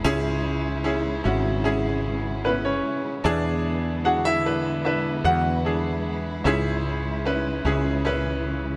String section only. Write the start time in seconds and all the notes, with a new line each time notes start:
Already playing: G#3 E4
0.04 C#3 E3
3.25 D3 G#3 B3 E4
6.45 C#3 E3